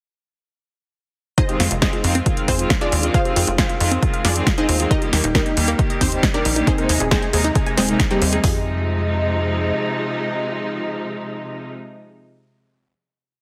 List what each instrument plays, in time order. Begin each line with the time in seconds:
1.38 synth pluck D#4 G#4 C5 D#5, synth arpeggio sound F4, kick, closed hi-hat
1.49 string section D#3 G#3 C4 F4, synth arpeggio sound G4, closed hi-hat
1.60 analog synth bass F2, synth arpeggio sound F4, snare, open hi-hat
1.71 analog synth bass F1, synth arpeggio sound F4, closed hi-hat
1.82 string section D#3 G#3 C4 F4, synth pluck D#4 G#4 C5 D#5, synth arpeggio sound F5, kick, snare, closed hi-hat
1.93 synth arpeggio sound F4, closed hi-hat
2.04 analog synth bass F2, string section D#3 G#3 C4 F4, synth arpeggio sound F4, open hi-hat
2.15 synth arpeggio sound C4, closed hi-hat
2.26 string section D#3 G#3 C4 F4, synth arpeggio sound F4, kick, closed hi-hat
2.37 synth arpeggio sound F5, closed hi-hat
2.48 analog synth bass F2, synth pluck C4 F4 G#4 C5, synth arpeggio sound F4, kick, open hi-hat
2.59 string section D#3 G#3 C4 F4, closed hi-hat
2.70 synth arpeggio sound F5, kick, snare, closed hi-hat
2.81 string section D#3 G#3 C4 F4, synth pluck D4 F4 G#4 D5, synth arpeggio sound F4, closed hi-hat
2.92 analog synth bass D#2, synth arpeggio sound F4, open hi-hat
3.03 string section D#3 G#3 C4 F4, synth arpeggio sound F4, closed hi-hat
3.14 synth arpeggio sound F4, synth pluck F4 G#4 C5 F5, kick, closed hi-hat
3.25 string section D#3 G#3 C4 F4, synth arpeggio sound G4, closed hi-hat
3.36 analog synth bass F2, synth arpeggio sound F4, open hi-hat
3.47 analog synth bass F1, synth arpeggio sound F4, closed hi-hat
3.58 string section D#3 G#3 C4 F4, synth pluck F4 G#4 C5 F5, synth arpeggio sound F5, kick, snare, closed hi-hat
3.69 synth arpeggio sound F4, closed hi-hat
3.80 analog synth bass F2, string section D#3 G#3 C4 F4, synth arpeggio sound F4, open hi-hat
3.91 synth arpeggio sound C4, closed hi-hat
4.03 string section D#3 G#3 C4 F4, synth arpeggio sound F4, kick, closed hi-hat
4.14 synth arpeggio sound F5, closed hi-hat
4.25 analog synth bass F2, synth pluck D4 F4 G#4 D5, synth arpeggio sound F4, snare, open hi-hat
4.36 string section D#3 G#3 C4 F4, closed hi-hat
4.47 synth arpeggio sound F5, kick, snare, closed hi-hat
4.58 string section D#3 G#3 C4 F4, synth pluck D#4 G#4 C5 D#5, synth arpeggio sound F4, closed hi-hat
4.69 analog synth bass D#2, synth arpeggio sound F4, open hi-hat
4.80 string section D#3 G#3 C4 F4, synth arpeggio sound F4, closed hi-hat
4.91 synth arpeggio sound D#4, synth pluck D#4 G4 A#4 D#5, kick, closed hi-hat
5.02 string section D#3 G3 A#3 G4, synth arpeggio sound F4, closed hi-hat
5.13 analog synth bass D#2, synth arpeggio sound D#4, snare, open hi-hat
5.24 analog synth bass D#1, synth arpeggio sound D#4, closed hi-hat
5.35 string section D#3 G3 A#3 G4, synth pluck D#4 G4 A#4 D#5, synth arpeggio sound D#5, kick, snare, closed hi-hat
5.46 synth arpeggio sound D#4, closed hi-hat
5.57 analog synth bass D#2, string section D#3 G3 A#3 G4, synth arpeggio sound D#4, open hi-hat
5.68 synth arpeggio sound A#3, closed hi-hat
5.79 string section D#3 G3 A#3 G4, synth arpeggio sound D#4, kick, closed hi-hat
5.90 synth arpeggio sound D#5, closed hi-hat
6.01 analog synth bass D#2, synth pluck C4 D#4 G4 C5, synth arpeggio sound D#4, kick, open hi-hat
6.12 string section D#3 G3 A#3 G4, closed hi-hat
6.23 synth arpeggio sound D#5, kick, snare, closed hi-hat
6.34 string section D#3 G3 A#3 G4, synth pluck D4 G4 A#4 D5, synth arpeggio sound D#4, closed hi-hat
6.45 analog synth bass A#1, synth arpeggio sound D#4, open hi-hat
6.56 string section D#3 G3 A#3 G4, synth arpeggio sound D#4, closed hi-hat
6.67 synth pluck C4 D#4 G#4 C5, synth arpeggio sound G#4, kick, closed hi-hat
6.78 string section C3 G#3 A#3 D#4, synth arpeggio sound A#4, closed hi-hat
6.89 analog synth bass D#2, synth arpeggio sound G#4, open hi-hat
7.00 analog synth bass D#1, synth arpeggio sound G#4, closed hi-hat
7.11 string section C3 G#3 A#3 D#4, synth pluck C4 D#4 G#4 C5, synth arpeggio sound G#5, kick, snare, closed hi-hat
7.22 synth arpeggio sound G#4, closed hi-hat
7.33 analog synth bass D#2, string section C3 G#3 A#3 D#4, synth arpeggio sound G#4, open hi-hat
7.44 synth arpeggio sound D#4, closed hi-hat
7.55 string section C3 G#3 A#3 D#4, synth arpeggio sound G#4, kick, closed hi-hat
7.66 synth arpeggio sound G#5, closed hi-hat
7.77 analog synth bass D#1, synth pluck G#3 C4 D#4 G#4, synth arpeggio sound C5, snare, open hi-hat
7.89 string section C3 G#3 A#3 D#4, closed hi-hat
8.00 synth arpeggio sound G#4, kick, snare, closed hi-hat
8.11 string section C3 G#3 A#3 D#4, synth pluck G3 C4 D#4 G4, synth arpeggio sound G#4, closed hi-hat
8.22 analog synth bass D#2, synth arpeggio sound C5, open hi-hat
8.33 string section C3 G#3 A#3 D#4, synth arpeggio sound G#4, closed hi-hat
8.44 analog synth bass F2, string section C3 F3 G#3 D#4, synth arpeggio sound F4, synth pluck G#4, kick, open hi-hat